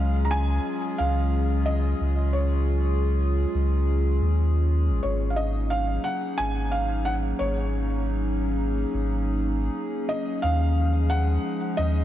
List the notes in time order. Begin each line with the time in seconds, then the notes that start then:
Already playing: C#2 F#3 G#3 C#4 F4 G#4 F5
0.25 A#5
0.31 G#5
0.98 C#2 F5
1.66 D#5
2.01 C#2
2.33 C#5
3.55 C#2
4.22 D#2
4.89 G#1
5.03 G#1 F#3 A#3 C#4 D#4 C#5
5.30 F5
5.36 D#5
5.70 F5
6.04 F#5
6.38 G#1 G#5
6.71 F5
7.05 F#5
7.39 G#1 C#5
7.74 G#4
8.94 G#1
10.09 D#5
10.42 D#2 F3 G#3 D#4 F5
11.10 F#5
11.77 D#2 D#5